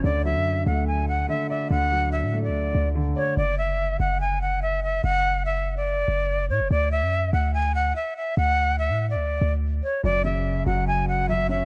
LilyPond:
<<
  \new Staff \with { instrumentName = "Flute" } { \time 4/4 \key d \lydian \tempo 4 = 144 d''8 e''4 fis''8 gis''8 fis''8 e''8 e''8 | fis''4 e''8. d''4.~ d''16 cis''8 | d''8 e''4 fis''8 gis''8 fis''8 e''8 e''8 | fis''4 e''8. d''4.~ d''16 cis''8 |
d''8 e''4 fis''8 gis''8 fis''8 e''8 e''8 | fis''4 e''8. d''4.~ d''16 cis''8 | d''8 e''4 fis''8 gis''8 fis''8 e''8 e''8 | }
  \new Staff \with { instrumentName = "Grand piano" } { \clef bass \time 4/4 \key d \lydian d8 fis4 a4. d8 d''8 | d8 fis4 a4. d8 d''8 | r1 | r1 |
r1 | r1 | fis,8 cis4 fis4. fis,8 cis'8 | }
  \new Staff \with { instrumentName = "808-style bass" } { \clef bass \time 4/4 \key d \lydian d,8. fis,8. d,4. r4 | d,4~ d,16 a,8~ a,32 d,8~ d,32 d,4 r8 | fis,,4. fis,,2~ fis,,8 | fis,,2~ fis,,8 fis,,4 a,16 fis,,16 |
d,8. fis,8. d,4. r4 | d,4~ d,16 a,8~ a,32 d,8~ d,32 d,4 r8 | fis,,4. fis,,2~ fis,,8 | }
>>